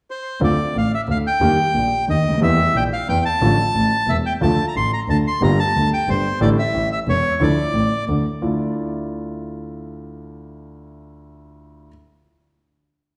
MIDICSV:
0, 0, Header, 1, 4, 480
1, 0, Start_track
1, 0, Key_signature, -1, "minor"
1, 0, Tempo, 334076
1, 589, Time_signature, 3, 2, 24, 8
1, 18921, End_track
2, 0, Start_track
2, 0, Title_t, "Bandoneon"
2, 0, Program_c, 0, 23
2, 153, Note_on_c, 0, 72, 66
2, 579, Note_off_c, 0, 72, 0
2, 632, Note_on_c, 0, 74, 66
2, 1106, Note_off_c, 0, 74, 0
2, 1121, Note_on_c, 0, 77, 65
2, 1321, Note_off_c, 0, 77, 0
2, 1358, Note_on_c, 0, 76, 63
2, 1455, Note_off_c, 0, 76, 0
2, 1592, Note_on_c, 0, 77, 69
2, 1691, Note_off_c, 0, 77, 0
2, 1826, Note_on_c, 0, 79, 81
2, 2949, Note_off_c, 0, 79, 0
2, 3021, Note_on_c, 0, 75, 71
2, 3451, Note_off_c, 0, 75, 0
2, 3493, Note_on_c, 0, 76, 80
2, 3972, Note_off_c, 0, 76, 0
2, 3975, Note_on_c, 0, 79, 79
2, 4076, Note_off_c, 0, 79, 0
2, 4211, Note_on_c, 0, 77, 72
2, 4420, Note_off_c, 0, 77, 0
2, 4440, Note_on_c, 0, 79, 78
2, 4654, Note_off_c, 0, 79, 0
2, 4679, Note_on_c, 0, 81, 90
2, 5881, Note_on_c, 0, 76, 74
2, 5905, Note_off_c, 0, 81, 0
2, 5984, Note_off_c, 0, 76, 0
2, 6123, Note_on_c, 0, 79, 72
2, 6227, Note_off_c, 0, 79, 0
2, 6360, Note_on_c, 0, 81, 82
2, 6689, Note_off_c, 0, 81, 0
2, 6725, Note_on_c, 0, 82, 76
2, 6828, Note_off_c, 0, 82, 0
2, 6847, Note_on_c, 0, 84, 83
2, 7061, Note_off_c, 0, 84, 0
2, 7088, Note_on_c, 0, 82, 75
2, 7192, Note_off_c, 0, 82, 0
2, 7328, Note_on_c, 0, 81, 74
2, 7432, Note_off_c, 0, 81, 0
2, 7580, Note_on_c, 0, 84, 81
2, 7787, Note_off_c, 0, 84, 0
2, 7807, Note_on_c, 0, 82, 81
2, 8040, Note_on_c, 0, 81, 87
2, 8041, Note_off_c, 0, 82, 0
2, 8475, Note_off_c, 0, 81, 0
2, 8529, Note_on_c, 0, 79, 75
2, 8758, Note_off_c, 0, 79, 0
2, 8759, Note_on_c, 0, 72, 74
2, 9190, Note_off_c, 0, 72, 0
2, 9223, Note_on_c, 0, 74, 81
2, 9328, Note_off_c, 0, 74, 0
2, 9467, Note_on_c, 0, 76, 80
2, 9904, Note_off_c, 0, 76, 0
2, 9948, Note_on_c, 0, 76, 71
2, 10051, Note_off_c, 0, 76, 0
2, 10194, Note_on_c, 0, 73, 74
2, 10670, Note_on_c, 0, 74, 74
2, 10672, Note_off_c, 0, 73, 0
2, 11565, Note_off_c, 0, 74, 0
2, 18921, End_track
3, 0, Start_track
3, 0, Title_t, "Grand piano"
3, 0, Program_c, 1, 0
3, 586, Note_on_c, 1, 50, 70
3, 588, Note_on_c, 1, 57, 51
3, 589, Note_on_c, 1, 38, 65
3, 592, Note_on_c, 1, 60, 52
3, 593, Note_on_c, 1, 65, 65
3, 791, Note_off_c, 1, 50, 0
3, 791, Note_off_c, 1, 57, 0
3, 792, Note_off_c, 1, 38, 0
3, 793, Note_off_c, 1, 60, 0
3, 793, Note_off_c, 1, 65, 0
3, 1075, Note_on_c, 1, 33, 43
3, 1075, Note_on_c, 1, 45, 44
3, 1274, Note_off_c, 1, 33, 0
3, 1274, Note_off_c, 1, 45, 0
3, 1550, Note_on_c, 1, 38, 48
3, 1550, Note_on_c, 1, 50, 45
3, 1752, Note_off_c, 1, 38, 0
3, 1752, Note_off_c, 1, 50, 0
3, 2024, Note_on_c, 1, 51, 70
3, 2025, Note_on_c, 1, 55, 53
3, 2026, Note_on_c, 1, 39, 70
3, 2028, Note_on_c, 1, 67, 67
3, 2029, Note_on_c, 1, 58, 53
3, 2229, Note_off_c, 1, 39, 0
3, 2229, Note_off_c, 1, 51, 0
3, 2229, Note_off_c, 1, 55, 0
3, 2230, Note_off_c, 1, 67, 0
3, 2231, Note_off_c, 1, 58, 0
3, 2499, Note_on_c, 1, 34, 44
3, 2501, Note_on_c, 1, 46, 47
3, 2705, Note_off_c, 1, 34, 0
3, 2706, Note_off_c, 1, 46, 0
3, 2988, Note_on_c, 1, 39, 46
3, 2989, Note_on_c, 1, 51, 51
3, 3190, Note_off_c, 1, 39, 0
3, 3190, Note_off_c, 1, 51, 0
3, 3283, Note_on_c, 1, 37, 42
3, 3345, Note_off_c, 1, 37, 0
3, 3359, Note_on_c, 1, 38, 49
3, 3411, Note_on_c, 1, 39, 58
3, 3413, Note_off_c, 1, 38, 0
3, 3466, Note_on_c, 1, 52, 73
3, 3467, Note_on_c, 1, 55, 57
3, 3469, Note_off_c, 1, 39, 0
3, 3470, Note_on_c, 1, 40, 73
3, 3470, Note_on_c, 1, 58, 55
3, 3476, Note_on_c, 1, 67, 70
3, 3667, Note_off_c, 1, 55, 0
3, 3669, Note_off_c, 1, 40, 0
3, 3669, Note_off_c, 1, 58, 0
3, 3670, Note_off_c, 1, 52, 0
3, 3672, Note_off_c, 1, 67, 0
3, 3945, Note_on_c, 1, 34, 49
3, 3947, Note_on_c, 1, 46, 49
3, 4146, Note_off_c, 1, 34, 0
3, 4147, Note_off_c, 1, 46, 0
3, 4429, Note_on_c, 1, 40, 49
3, 4430, Note_on_c, 1, 52, 48
3, 4626, Note_off_c, 1, 40, 0
3, 4627, Note_off_c, 1, 52, 0
3, 4903, Note_on_c, 1, 50, 59
3, 4905, Note_on_c, 1, 57, 56
3, 4906, Note_on_c, 1, 33, 70
3, 4909, Note_on_c, 1, 45, 70
3, 4909, Note_on_c, 1, 53, 54
3, 4910, Note_on_c, 1, 65, 67
3, 5103, Note_off_c, 1, 50, 0
3, 5104, Note_off_c, 1, 57, 0
3, 5105, Note_off_c, 1, 33, 0
3, 5106, Note_off_c, 1, 45, 0
3, 5106, Note_off_c, 1, 53, 0
3, 5107, Note_off_c, 1, 65, 0
3, 5385, Note_on_c, 1, 33, 47
3, 5385, Note_on_c, 1, 45, 46
3, 5584, Note_off_c, 1, 33, 0
3, 5584, Note_off_c, 1, 45, 0
3, 5859, Note_on_c, 1, 28, 43
3, 5862, Note_on_c, 1, 40, 43
3, 6062, Note_off_c, 1, 28, 0
3, 6063, Note_off_c, 1, 40, 0
3, 6335, Note_on_c, 1, 50, 67
3, 6338, Note_on_c, 1, 53, 53
3, 6339, Note_on_c, 1, 38, 71
3, 6340, Note_on_c, 1, 57, 54
3, 6340, Note_on_c, 1, 65, 66
3, 6542, Note_off_c, 1, 50, 0
3, 6543, Note_off_c, 1, 38, 0
3, 6543, Note_off_c, 1, 53, 0
3, 6544, Note_off_c, 1, 57, 0
3, 6544, Note_off_c, 1, 65, 0
3, 6827, Note_on_c, 1, 33, 45
3, 6830, Note_on_c, 1, 45, 43
3, 7028, Note_off_c, 1, 33, 0
3, 7030, Note_off_c, 1, 45, 0
3, 7311, Note_on_c, 1, 38, 46
3, 7312, Note_on_c, 1, 50, 44
3, 7511, Note_off_c, 1, 38, 0
3, 7512, Note_off_c, 1, 50, 0
3, 7786, Note_on_c, 1, 50, 63
3, 7786, Note_on_c, 1, 55, 60
3, 7789, Note_on_c, 1, 43, 74
3, 7790, Note_on_c, 1, 58, 54
3, 7792, Note_on_c, 1, 31, 73
3, 7795, Note_on_c, 1, 65, 67
3, 7986, Note_off_c, 1, 50, 0
3, 7986, Note_off_c, 1, 55, 0
3, 7988, Note_off_c, 1, 43, 0
3, 7988, Note_off_c, 1, 58, 0
3, 7989, Note_off_c, 1, 31, 0
3, 7990, Note_off_c, 1, 65, 0
3, 8271, Note_on_c, 1, 38, 48
3, 8275, Note_on_c, 1, 50, 48
3, 8466, Note_off_c, 1, 38, 0
3, 8468, Note_off_c, 1, 50, 0
3, 8742, Note_on_c, 1, 31, 51
3, 8745, Note_on_c, 1, 43, 48
3, 8939, Note_off_c, 1, 31, 0
3, 8940, Note_off_c, 1, 43, 0
3, 9207, Note_on_c, 1, 50, 65
3, 9210, Note_on_c, 1, 55, 59
3, 9211, Note_on_c, 1, 33, 79
3, 9211, Note_on_c, 1, 45, 71
3, 9212, Note_on_c, 1, 57, 60
3, 9214, Note_on_c, 1, 64, 74
3, 9410, Note_off_c, 1, 50, 0
3, 9411, Note_off_c, 1, 33, 0
3, 9411, Note_off_c, 1, 55, 0
3, 9412, Note_off_c, 1, 45, 0
3, 9412, Note_off_c, 1, 57, 0
3, 9413, Note_off_c, 1, 64, 0
3, 9685, Note_on_c, 1, 45, 48
3, 9689, Note_on_c, 1, 33, 51
3, 9888, Note_off_c, 1, 45, 0
3, 9890, Note_off_c, 1, 33, 0
3, 10161, Note_on_c, 1, 40, 48
3, 10162, Note_on_c, 1, 28, 48
3, 10364, Note_off_c, 1, 40, 0
3, 10365, Note_off_c, 1, 28, 0
3, 10632, Note_on_c, 1, 50, 69
3, 10639, Note_on_c, 1, 38, 71
3, 10639, Note_on_c, 1, 53, 58
3, 10642, Note_on_c, 1, 57, 53
3, 10643, Note_on_c, 1, 64, 69
3, 10842, Note_off_c, 1, 50, 0
3, 10843, Note_off_c, 1, 53, 0
3, 10844, Note_off_c, 1, 38, 0
3, 10845, Note_off_c, 1, 57, 0
3, 10845, Note_off_c, 1, 64, 0
3, 11115, Note_on_c, 1, 45, 45
3, 11117, Note_on_c, 1, 33, 44
3, 11323, Note_off_c, 1, 45, 0
3, 11324, Note_off_c, 1, 33, 0
3, 11613, Note_on_c, 1, 38, 46
3, 11615, Note_on_c, 1, 50, 45
3, 11815, Note_off_c, 1, 38, 0
3, 11816, Note_off_c, 1, 50, 0
3, 12099, Note_on_c, 1, 62, 41
3, 12100, Note_on_c, 1, 65, 50
3, 12102, Note_on_c, 1, 64, 43
3, 12104, Note_on_c, 1, 38, 44
3, 17061, Note_off_c, 1, 62, 0
3, 17061, Note_off_c, 1, 65, 0
3, 17062, Note_off_c, 1, 64, 0
3, 17063, Note_off_c, 1, 38, 0
3, 18921, End_track
4, 0, Start_track
4, 0, Title_t, "Double bass"
4, 0, Program_c, 2, 43
4, 585, Note_on_c, 2, 38, 73
4, 789, Note_off_c, 2, 38, 0
4, 1073, Note_on_c, 2, 33, 49
4, 1273, Note_off_c, 2, 33, 0
4, 1543, Note_on_c, 2, 38, 50
4, 1748, Note_off_c, 2, 38, 0
4, 2021, Note_on_c, 2, 39, 76
4, 2227, Note_off_c, 2, 39, 0
4, 2504, Note_on_c, 2, 34, 50
4, 2708, Note_off_c, 2, 34, 0
4, 2992, Note_on_c, 2, 39, 53
4, 3192, Note_off_c, 2, 39, 0
4, 3227, Note_on_c, 2, 38, 49
4, 3463, Note_off_c, 2, 38, 0
4, 3472, Note_on_c, 2, 40, 80
4, 3670, Note_off_c, 2, 40, 0
4, 3946, Note_on_c, 2, 34, 53
4, 4146, Note_off_c, 2, 34, 0
4, 4426, Note_on_c, 2, 40, 52
4, 4625, Note_off_c, 2, 40, 0
4, 4906, Note_on_c, 2, 33, 81
4, 5104, Note_off_c, 2, 33, 0
4, 5385, Note_on_c, 2, 33, 49
4, 5584, Note_off_c, 2, 33, 0
4, 5856, Note_on_c, 2, 28, 50
4, 6060, Note_off_c, 2, 28, 0
4, 6343, Note_on_c, 2, 38, 76
4, 6545, Note_off_c, 2, 38, 0
4, 6826, Note_on_c, 2, 33, 49
4, 7028, Note_off_c, 2, 33, 0
4, 7302, Note_on_c, 2, 38, 53
4, 7507, Note_off_c, 2, 38, 0
4, 7785, Note_on_c, 2, 31, 75
4, 7985, Note_off_c, 2, 31, 0
4, 8269, Note_on_c, 2, 38, 49
4, 8465, Note_off_c, 2, 38, 0
4, 8741, Note_on_c, 2, 31, 53
4, 8938, Note_off_c, 2, 31, 0
4, 9211, Note_on_c, 2, 33, 83
4, 9411, Note_off_c, 2, 33, 0
4, 9687, Note_on_c, 2, 33, 52
4, 9889, Note_off_c, 2, 33, 0
4, 10169, Note_on_c, 2, 28, 56
4, 10368, Note_off_c, 2, 28, 0
4, 10642, Note_on_c, 2, 38, 77
4, 10845, Note_off_c, 2, 38, 0
4, 11121, Note_on_c, 2, 33, 53
4, 11326, Note_off_c, 2, 33, 0
4, 11612, Note_on_c, 2, 38, 51
4, 11815, Note_off_c, 2, 38, 0
4, 12104, Note_on_c, 2, 38, 46
4, 12301, Note_off_c, 2, 38, 0
4, 18921, End_track
0, 0, End_of_file